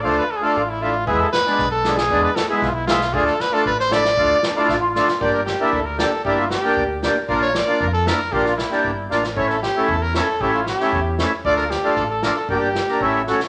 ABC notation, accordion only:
X:1
M:2/4
L:1/16
Q:1/4=116
K:none
V:1 name="Accordion"
[A,DF]2 z [A,DF] z2 [A,DE] z | [^G,B,E]2 z [G,B,D] z2 [G,B,D] z | [^G,B,D]2 z [G,B,E] z2 [G,B,E] z | [A,DF]2 z [A,DF] z2 [A,DE] z |
[A,DF]2 z [A,DF] z2 [A,DF] z | [_B,DG]2 z [B,DE] z2 [B,DG] z | [_B,DE]2 z [B,DG] z2 [B,DG] z | [_B,DF]2 z [B,DF] z2 [B,DE] z |
[_B,DF]2 z [B,DG] z2 [B,DF] z | [A,^CE]2 z [A,CE] z2 [A,CE] z | [A,^CE]2 z [A,CE] z2 [A,CE] z | [A,DF]2 z [A,DF] z2 [A,DF] z |
[_B,DG]2 z [B,D_B] [A,^CE]2 [A,C^F] z |]